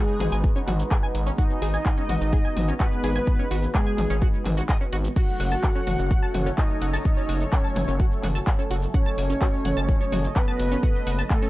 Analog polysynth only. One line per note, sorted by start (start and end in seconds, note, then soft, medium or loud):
0.00 0.40 G#3 medium
1.38 2.71 D#4 loud
2.80 3.65 B3 loud
3.75 4.18 G#3 medium
5.16 6.49 F#4 loud
6.58 7.43 D#4 loud
7.52 7.96 C#4 medium
8.94 10.26 C#4 loud
10.36 11.21 B3 loud
11.30 11.50 A3 medium